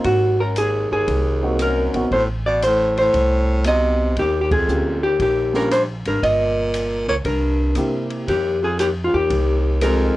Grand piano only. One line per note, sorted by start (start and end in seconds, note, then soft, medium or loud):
1.42 1.91 A#3 medium
1.42 1.91 C4 medium
1.42 1.91 D#4 medium
1.42 1.91 F#4 medium
1.94 2.09 B3 medium
1.94 2.09 C4 medium
1.94 2.10 D#4 medium
1.94 2.10 F#4 medium
3.65 4.17 B3 medium
3.65 4.17 C4 soft
3.65 4.17 D#4 medium
3.65 4.17 F#4 medium
4.67 4.99 A#3 medium
4.67 4.99 C#4 soft
4.67 5.00 F4 medium
4.67 5.00 G4 medium
5.52 5.68 A#3 medium
5.52 5.69 C#4 medium
5.52 5.69 F4 medium
5.52 5.69 G4 medium
7.76 8.28 A#3 medium
7.76 8.28 C4 medium
7.76 8.28 E4 medium
7.76 8.29 G4 medium
9.82 10.17 G#3 medium
9.82 10.17 C4 medium
9.82 10.17 D#4 medium
9.82 10.17 G4 medium